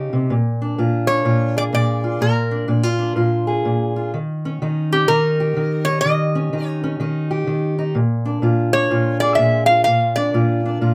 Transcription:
0.00 0.12 C#3 medium
0.00 0.29 C#4 soft
0.00 0.29 D#4 medium
0.00 0.30 G4 medium
0.13 0.30 C3 medium
0.30 0.78 A#2 medium
0.62 1.10 D4 medium
0.78 1.24 A#2 medium
0.78 1.25 F4 medium
1.07 2.21 D4 medium
1.07 1.57 C#5 loud
1.25 1.72 A#2 medium
1.25 2.03 F4 medium
1.57 2.20 G#4 medium
1.57 1.63 D5 medium
1.73 2.19 A#2 medium
1.73 2.24 D5 medium
2.04 2.20 F4 medium
2.21 2.67 A#2 medium
2.21 2.66 A#4 medium
2.51 2.67 D4 medium
2.68 3.14 A#2 medium
2.68 2.83 D4 medium
2.83 3.15 F4 medium
2.99 4.10 D4 medium
3.16 3.64 A#2 medium
3.16 3.95 F4 medium
3.47 4.11 G#4 medium
3.65 4.11 A#2 medium
3.96 4.11 F4 medium
4.14 4.61 D#3 medium
4.45 4.93 C#4 medium
4.62 5.09 D#3 medium
4.62 5.10 D#4 medium
4.92 6.03 C#4 medium
4.92 5.08 G4 medium
5.08 5.55 D#3 medium
5.08 5.87 D#4 medium
5.08 5.89 A#4 medium
5.40 7.29 G4 medium
5.57 6.02 D#3 medium
5.85 6.03 D#4 medium
5.85 6.00 C#5 loud
6.01 6.67 D#5 loud
6.05 6.52 D#3 medium
6.35 6.82 C#4 medium
6.53 6.98 D#3 medium
6.53 6.99 D#4 medium
6.67 6.94 C#5 loud
6.84 7.94 C#4 medium
7.00 7.46 D#3 medium
7.00 7.77 D#4 medium
7.31 7.96 G4 medium
7.47 7.93 D#3 medium
7.79 7.94 D#4 medium
7.95 8.42 A#2 medium
8.25 8.74 D4 medium
8.42 8.90 A#2 medium
8.42 8.91 F4 medium
8.73 9.85 D4 medium
8.73 9.20 C#5 medium
8.91 9.37 A#2 medium
8.91 9.69 F4 medium
9.20 9.85 G#4 medium
9.20 9.38 D5 medium
9.35 9.84 A#2 medium
9.35 9.66 E5 medium
9.66 10.34 F4 medium
9.66 9.83 F5 medium
9.84 10.33 A#2 medium
9.84 10.17 F5 loud
10.16 10.64 D4 medium
10.16 10.77 D5 medium
10.34 10.80 A#2 medium
10.34 10.81 F4 medium
10.66 10.94 D4 medium
10.81 10.94 A#2 medium
10.81 10.94 F4 medium

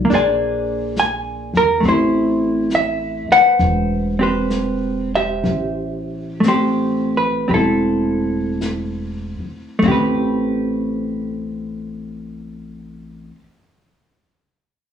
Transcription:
0.00 0.13 F4 medium
0.05 1.80 A#3 soft
0.10 1.49 A#1 medium
0.10 1.83 D4 soft
0.10 1.85 G#4 soft
0.10 brush sweep soft
0.10 snare soft
0.14 1.81 C5 medium
0.14 1.81 D5 medium
0.14 0.98 G#5 medium
0.96 1.57 G#5 medium
0.96 snare soft
0.96 hi-hat pedal soft
1.53 1.81 E2 medium
1.53 1.83 A#4 medium
1.53 snare soft
1.80 3.24 A1 medium
1.80 5.43 A3 soft
1.80 brush sweep soft
1.80 snare soft
1.85 3.31 C4 soft
1.85 3.32 E4 soft
1.85 2.69 C5 medium
2.70 snare soft
2.70 hi-hat pedal soft
2.75 3.27 E5 medium
3.29 4.19 B4 medium
3.29 4.21 C5 medium
3.29 4.16 F#5 medium
3.29 muted upright bass stroke soft
3.59 5.41 E1 medium
3.59 brush sweep soft
3.59 snare soft
4.19 5.16 C4 soft
4.19 5.15 G4 soft
4.19 5.15 B4 medium
4.19 5.14 C5 medium
4.50 snare soft
4.50 hi-hat pedal soft
5.15 6.44 G4 medium
5.15 6.47 C5 soft
5.15 6.48 E5 medium
5.44 7.44 A1 medium
5.44 brush sweep soft
5.44 snare soft
6.40 9.78 A3 soft
6.40 snare soft
6.40 hi-hat pedal soft
6.44 7.47 C4 soft
6.44 7.48 G4 soft
6.44 7.17 C5 medium
7.17 7.50 B4 medium
7.48 9.36 E1 medium
7.48 7.53 C4 soft
7.48 7.54 G4 soft
7.48 7.54 B4 soft
7.48 brush sweep soft
7.54 9.81 C4 soft
7.54 9.81 E4 soft
7.54 9.38 A4 medium
8.61 snare soft
8.61 hi-hat pedal soft
9.40 muted upright bass stroke soft
9.79 13.29 A1 medium
9.79 13.31 A3 medium
9.79 kick medium
9.79 floor tom medium
9.84 13.35 C4 medium
9.84 9.87 E4 medium
9.88 13.39 G4 medium
9.88 13.43 B4 medium

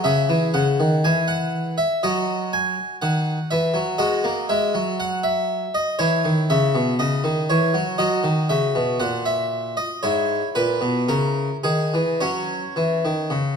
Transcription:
0.04 0.28 C#3 medium
0.04 1.99 G#4 soft
0.04 0.46 E5 loud
0.29 0.53 E3 medium
0.54 0.77 C#3 medium
0.54 0.96 F#5 loud
0.80 1.03 D#3 medium
1.04 1.76 E3 medium
1.04 1.29 G#5 loud
1.28 1.78 F#5 loud
1.78 2.03 E5 loud
2.03 2.75 F#3 medium
2.03 3.97 F#4 soft
2.03 2.53 D#5 medium
2.53 2.95 G#5 loud
3.02 3.38 D#3 medium
3.02 3.51 F#5 medium
3.51 3.75 E3 medium
3.51 4.00 E5 medium
3.74 3.98 F#3 medium
3.98 4.23 G#3 medium
3.98 5.95 F#4 soft
3.98 4.49 D#5 loud
4.24 4.48 A#3 medium
4.49 4.73 G#3 medium
4.49 4.99 E5 loud
4.74 5.64 F#3 medium
5.00 5.24 F#5 loud
5.23 5.74 E5 medium
5.75 6.00 D#5 loud
5.99 6.23 E3 medium
5.99 7.96 E4 soft
5.99 6.42 C#5 loud
6.25 6.49 D#3 medium
6.50 6.74 C#3 medium
6.50 6.92 E5 loud
6.75 6.98 B2 medium
6.99 7.23 C#3 medium
6.99 7.42 D#5 medium
7.24 7.48 D#3 medium
7.50 7.74 E3 medium
7.50 8.00 C#5 medium
7.74 7.98 F#3 medium
7.98 8.23 F#3 medium
7.98 9.99 F#4 soft
7.98 8.49 D#5 loud
8.24 8.48 D#3 medium
8.49 8.74 C#3 medium
8.49 9.00 E5 medium
8.75 8.99 B2 medium
9.00 9.74 A#2 medium
9.00 9.26 F#5 medium
9.26 9.77 E5 medium
9.77 10.03 D#5 loud
10.03 10.41 G#2 medium
10.03 12.17 E4 soft
10.03 10.47 C#5 medium
10.55 10.80 A#2 medium
10.55 11.07 B4 loud
10.81 11.06 B2 medium
11.08 11.48 C#3 medium
11.08 11.55 A#4 medium
11.64 11.91 D#3 medium
11.64 12.21 G#4 medium
11.94 12.20 E3 medium
12.21 12.61 F#3 medium
12.21 13.56 C#4 soft
12.21 13.56 C#5 medium
12.76 13.02 E3 medium
13.05 13.30 D#3 medium
13.30 13.56 C#3 medium

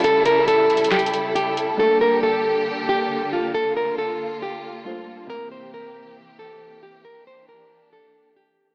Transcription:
0.00 1.76 C#3 medium
0.00 1.76 G3 medium
0.00 1.74 A3 medium
0.00 1.75 E4 medium
0.00 1.76 E4 medium
0.00 1.76 G4 medium
0.00 5.26 A4 medium
0.00 1.76 C#5 medium
0.04 0.22 A4 loud
0.04 closed hi-hat medium
0.26 0.44 A#4 medium
0.26 closed hi-hat medium
0.48 0.89 A4 medium
0.48 closed hi-hat medium
0.70 closed hi-hat soft
0.77 closed hi-hat medium
0.84 closed hi-hat medium
0.92 1.33 G4 medium
0.92 snare loud
0.92 clap medium
0.99 closed hi-hat medium
1.06 closed hi-hat medium
1.14 closed hi-hat medium
1.35 1.77 G4 medium
1.35 closed hi-hat medium
1.57 closed hi-hat medium
1.77 5.26 D3 medium
1.77 4.81 G3 medium
1.77 8.75 A#3 medium
1.77 4.82 D4 medium
1.77 3.53 G4 medium
1.77 1.98 A4 loud
1.77 4.82 A4 medium
1.82 4.83 A#3 medium
2.01 2.19 A#4 medium
2.23 2.64 A4 medium
2.89 3.30 G4 medium
3.33 3.51 F4 medium
3.54 5.28 F4 medium
3.54 3.73 A4 medium
3.77 3.95 A#4 medium
3.98 4.39 A4 medium
4.42 4.83 G4 medium
4.84 5.29 G3 medium
4.84 5.29 D4 soft
4.84 5.27 F4 medium
4.84 5.30 A4 soft
4.84 5.30 C5 medium
5.27 8.75 C3 medium
5.27 8.75 E3 medium
5.27 8.75 C4 medium
5.27 7.03 C4 medium
5.27 8.75 E4 medium
5.27 8.75 G4 medium
5.27 5.48 A#4 loud
5.32 8.75 A#3 medium
5.52 5.70 C5 medium
5.74 6.15 A#4 medium
6.39 6.80 A4 medium
6.83 7.01 G4 medium
7.05 8.75 D4 medium
7.05 7.23 A#4 loud
7.27 7.45 C5 medium
7.49 7.90 A#4 medium
7.93 8.34 A4 medium
8.36 8.75 G4 medium

